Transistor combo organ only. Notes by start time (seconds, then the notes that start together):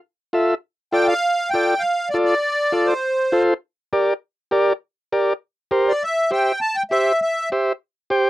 0.33 F4 A4 E5
0.92 F4 A4 D5
1.54 F4 A4 D5
2.14 F4 A4 D5
2.72 F4 A4 D5
3.32 F4 A4 C5
3.93 G4 A#4 D5
4.51 G4 A#4 D5
5.12 G4 A#4 D5
5.71 G4 A#4 C5
6.31 G4 C5 E5
6.91 G4 C5 E5
7.52 G4 C5 E5
8.10 G4 C5 G5